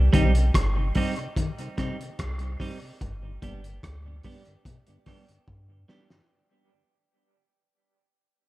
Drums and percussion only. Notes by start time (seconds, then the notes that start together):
0.13 kick, closed hi-hat
0.35 closed hi-hat
0.54 kick, cross-stick, closed hi-hat
0.95 kick, open hi-hat
1.16 closed hi-hat
1.36 kick, closed hi-hat
1.58 closed hi-hat
1.78 kick, cross-stick, closed hi-hat
2.01 closed hi-hat
2.19 kick, cross-stick, closed hi-hat
2.39 closed hi-hat
2.60 kick, open hi-hat
3.01 kick, closed hi-hat
3.42 kick, closed hi-hat
3.64 closed hi-hat
3.83 kick, cross-stick, closed hi-hat
4.23 kick, open hi-hat
4.45 closed hi-hat
4.65 kick, closed hi-hat
4.87 closed hi-hat
5.06 kick, cross-stick, open hi-hat
5.29 closed hi-hat
5.48 kick
5.89 snare
6.10 snare